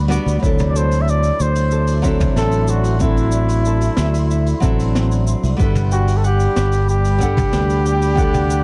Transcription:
Already playing: D2 G3 F#4 B4 D5 B5
0.08 G3 B3 D4 F#4 D5, shaker
0.26 D2, open hi-hat, shaker
0.40 D2 F#3 C4 D4 E4 F#4 E5 C6, kick, shaker
0.45 A4
0.59 mid tom, open hi-hat, shaker
0.69 D5
0.75 A4 C5, shaker
0.91 open hi-hat, shaker
1.02 E5
1.08 D5, shaker
1.23 open hi-hat, shaker
1.40 D2 C5, shaker
1.55 open hi-hat, shaker
1.71 A4, shaker
1.87 open hi-hat, shaker
2.02 F#3 C4 D4 E4 E5, kick, shaker
2.07 A4
2.20 kick, mid tom, open hi-hat, shaker
2.36 A1 E4 A4, snare, shaker
2.52 open hi-hat, shaker
2.68 F#4 A4, shaker
2.84 open hi-hat, shaker
2.99 F#3 C4 D4 E4, kick, shaker
3.04 A4
3.17 open hi-hat, shaker
3.32 shaker
3.48 open hi-hat, shaker
3.65 A4, shaker
3.81 open hi-hat, shaker
3.97 D2 E5, snare, shaker
4.14 open hi-hat, shaker
4.31 E4, shaker
4.46 open hi-hat, shaker
4.60 A1 F#3 C4 D4 A4, kick, mid tom, shaker
4.64 E4 A4
4.80 open hi-hat, shaker
4.95 snare, shaker
5.11 open hi-hat, shaker
5.27 shaker
5.44 C2, open hi-hat, shaker
5.57 G1 G3 B3 D4 B4 D5 B5, kick, shaker
5.62 A4
5.75 mid tom, open hi-hat, shaker
5.92 F#4 G5, shaker
6.08 open hi-hat, shaker
6.17 A4
6.24 G4 F#5, shaker
6.40 open hi-hat, shaker
6.56 G1 B4, snare, shaker
6.72 open hi-hat, shaker
6.89 G4, shaker
7.05 open hi-hat, shaker
7.18 G3 B3 D4 F#5, kick, shaker
7.23 A4
7.37 kick, mid tom, open hi-hat, shaker
7.53 D2 B4, snare, shaker
7.70 open hi-hat, shaker
7.86 G5, shaker
8.02 open hi-hat, shaker
8.14 G3 B3 D4 F#5, kick, shaker
8.20 A4
8.34 mid tom, open hi-hat, shaker
8.50 B4, shaker

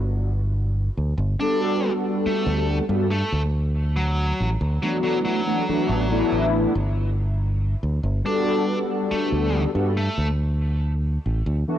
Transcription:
Already playing: G1
0.97 D2
1.18 G1
1.39 G3 B3 D4 F#4 A4
2.26 A3, muted fingered electric bass stroke
2.47 D2
2.88 G2 G3 B3 D4 F#4 A4
3.11 A3
3.32 D2
3.96 F#3
4.40 A1
4.61 D2
4.82 E3 F#3 A3 B3 D4 F#4
5.03 F#3
5.25 F#3
5.46 E3 A3 B3 D4 F#4
5.68 E3 A3 B3 D4 F#4, muted fingered electric bass stroke
5.89 A1
6.11 E3 A3 B3 D4 E4
6.32 A1
6.75 G1
7.83 D2
8.03 G1
8.24 G3 B3 D4 F#4 A4
9.11 A3, muted fingered electric bass stroke
9.32 D2
9.74 G2 G3 B3 D4 F#4 A4
9.97 A3
10.18 D2
11.26 A1
11.46 D2
11.68 E3 A3 B3 D4 F#4

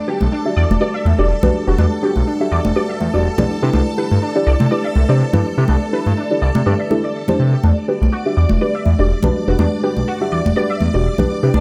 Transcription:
Already playing: D4 A4 B4 E5 A5
0.07 D4 F#4 G4 B4
0.21 B1, high conga
0.32 D4
0.45 D4 F#4 G4 E5
0.53 E2 G3 D5 F#5
0.70 E1, high conga
0.80 D4 F#4 G4 B4 D5
0.94 E5
1.05 E2, high conga
1.18 E1 D4 F#4 G4 D5
1.43 B1 D4 F#4 G4 B4, high conga, low conga
1.67 E1 D4 F#4 G4 B4
1.78 E2 D4, high conga
2.02 D4 F#4 G4 B4
2.16 B1, high conga
2.27 D4
2.40 D4 F#4 G4 E5
2.52 E2 D5
2.65 E1, high conga
2.76 D4 F#4 G4 B4 D5
2.89 E5
3.00 E2, high conga
3.13 E1 D4 F#4 G4 D5
3.38 B1 D4 E4 G4 B4, high conga, low conga
3.62 C3 D4 E4 G4 B4
3.73 C2 D4, high conga
3.98 D4 E4 G4 B4
4.11 G2, high conga
4.22 D4
4.35 D4 E4 G4 D5
4.47 C2 D5
4.57 C3 E5, high conga
4.71 D4 E4 G4 B4 D5
4.84 E5
4.95 C2, high conga
5.09 C3 D4 E4 G4 C5 D5
5.33 G2 D4 E4 G4 B4, high conga, low conga
5.57 C3 D4 E4 G4 B4
5.68 C2 D4, high conga
5.93 D4 E4 G4 B4
6.06 G2, high conga
6.17 D4
6.30 D4 E4 G4 D5
6.42 C2 D5
6.55 C3, high conga
6.66 G2 D4 E4 G4 B4 D5
6.80 E5
6.90 D4 E4 G4 A4, high conga
7.04 D5
7.28 D4 E4 G4 C5, high conga, low conga
7.39 C3
7.53 G4
7.63 E2 D4 D5 D6, high conga
7.88 D4 F#4 G4 B4
8.02 B1, high conga
8.12 F#4
8.24 G3 D4 F#4 G4 E5
8.37 E2 D5
8.49 E1, high conga
8.61 D4 F#4 G4 B4 D5
8.66 F#5
8.75 E5
8.85 E2, high conga
8.99 E1 D4 F#4 G4 D5
9.23 B1 D4 F#4 G4 B4, high conga, low conga
9.48 E1 D4 F#4 G4 B4
9.59 E2 D4, high conga
9.83 D4 F#4 G4 B4
9.97 B1, high conga
10.08 F#4
10.21 D4 F#4 G4 E5
10.32 E2 D5
10.45 E1, high conga
10.56 D4 F#4 G4 B4 D5
10.70 E5
10.81 E2, high conga
10.94 E1 D4 F#4 G4 D5
11.18 B1 D4 E4 G4 B4, high conga, low conga
11.43 C3 D4 E4 G4 B4
11.54 C2 D4, high conga

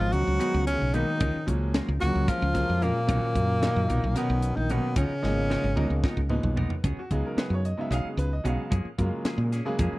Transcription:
Already playing: B2 D#3 F3 F#3 G#3 D#4 F4
0.00 G#1
0.13 C#2 F#3 F#4, closed hi-hat
0.27 C#2
0.39 B2 D#3 F#3 G#3 B3 D#4 F#4 B4, closed hi-hat
0.54 C#2
0.67 C#3 C#4, closed hi-hat
0.82 B1
0.93 B2 D#3 F#3 G#3 A#3 D#4 F#4 B4, closed hi-hat
1.20 C#2 G#3 C#4 F4 A#4, kick, closed hi-hat
1.36 muted fretless electric bass stroke
1.46 C#2 A#2 F3 F#3 G#3 C#4, kick, closed hi-hat
1.74 G#3 C#4 F4 A#4, snare, closed hi-hat
1.88 C#2
1.99 C#2 A#2 F3 F#3 G#3 A#3 F#4, closed hi-hat
2.03 F#3
2.15 C#2
2.28 F3 G#3 C#4 F4 A#4, kick, snare, closed hi-hat
2.42 C#2
2.53 A#2 F3 F#3 G#3 A#3, kick, snare, closed hi-hat
2.69 F2
2.82 A#2 G#3 A#3 C#4 F4 A#4, closed hi-hat
3.07 B1 A#2 D#3 F#3 A#3 B3 C#4 D#4 A#4, kick, closed hi-hat
3.35 F#2, kick, closed hi-hat
3.61 A#2 D#3 F#3 A#3 B3 D#4 A#4, snare, closed hi-hat
3.76 F#2
3.89 B1 B3 D#4 A#4, closed hi-hat
4.04 B1
4.15 B2 D#3 F#3 B3 C#4 D#4 A#4, snare, closed hi-hat
4.30 B1
4.42 closed hi-hat
4.56 A#1 D#3 D#4
4.69 B2 D#3 F#3 A#3 B3 C#4 D#4 A#4, closed hi-hat
4.96 C#2 C#3 F3 B3 C#4 D#4 A#4, kick, closed hi-hat
5.10 muted fretless electric bass stroke
5.22 G#1 B2 F3 G#3 A#3 D#4, snare
5.50 F3 B3 D#4 A#4, snare
5.64 G#1
5.75 C#2 B2 F3 G#3 A#3 B3 D#4 A#4, mid tom
5.90 C#2
6.04 F3 B3 D#4 A#4, kick, snare
6.17 C#2, kick
6.29 A#2 B2 F3 G#3 D#4 B4, mid tom
6.43 B1, floor tom
6.56 F3 B3 D#4 A#4, floor tom
6.70 floor tom
6.84 C#2 F#3 B3 C#4 G#4, kick, closed hi-hat
6.97 F#4, muted fretless electric bass stroke
7.11 C#2 C#3 F#3 G#3 B3 D#4 G#4, kick, closed hi-hat
7.26 A#4
7.37 F#3 B3 C#4 G#4 B4, muted fretless electric bass stroke, snare, closed hi-hat
7.50 F#2 C#5
7.65 D#5, closed hi-hat
7.77 C#3 F#3 G#3 B3 D#4 E5
7.91 B1 F#3 B3 C#4 G#4 F5, snare, closed hi-hat
8.05 G#4, muted fretless electric bass stroke
8.17 C#2 B4, closed hi-hat
8.33 D#5
8.44 B1 C#3 F#3 G#3 B3 C#4 F#4 G#4 F5, closed hi-hat
8.70 F#2 F3 A#3 C#4 G#4, kick, closed hi-hat
8.85 muted fretless electric bass stroke
8.98 F#2 C#3 F#3 G#3 A#3 F4, kick, closed hi-hat
9.25 F3 A#3 C#4 G#4, muted fretless electric bass stroke, snare, closed hi-hat
9.38 A#2
9.52 A#3 C#4 G#4, snare, closed hi-hat
9.65 C#3 F#3 G#3 A#3 G#4
9.79 F2 F3 A#3 C#4 G#4, kick, closed hi-hat
9.93 muted fretless electric bass stroke

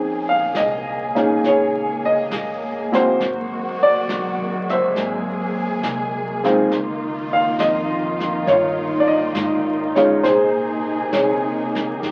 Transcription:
Already playing: A#1 A#3 C4 C#4 D#4 G#4
0.29 F5
0.54 C2 D#5, snare, hi-hat pedal
1.15 A#3 C#4 D#4 G#4, snare
1.43 C#2 C#5, brush sweep, snare
1.48 G#4
2.05 D#5
2.31 A#1, snare, hi-hat pedal
2.92 A#3 C4 E4 F#4 C5, snare
2.97 F#4
3.20 G#1 F#3 G#3 F#4, brush sweep, snare
3.80 D5, muted upright bass stroke
4.07 B1, snare, hi-hat pedal
4.38 G#1
4.66 F#1, snare
4.70 C5 E5
4.95 G#1 G#4, brush sweep, snare
5.81 C2, snare, hi-hat pedal
6.44 G#3 C4 D#4 F4, snare
6.69 C#2 D#3 D#4 F4, brush sweep, snare
7.33 F5
7.58 F2 D#5, snare, hi-hat pedal
8.20 snare
8.46 G2 C#5, brush sweep, snare
8.51 F4
9.00 D5
9.07 D#5
9.35 G#2, snare, hi-hat pedal
9.95 G#3 C#4 D#4 F4 C#5, snare
10.21 A#2 C3 A#3 G#4 C5, brush sweep, snare
10.29 G#4
11.12 C3 C#5, snare, hi-hat pedal
11.17 G#4
11.75 snare
12.02 G2 D#3 G4, brush sweep, snare

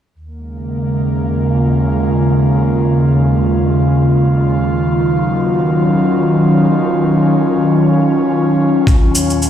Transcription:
0.15 D#2
0.26 A#3
0.38 C#3 G#3
1.15 F4
4.52 D#3
4.90 F#3
5.23 C#4
8.87 D#2, kick, shaker
9.09 A#2
9.15 shaker
9.30 G#3, shaker
9.42 shaker

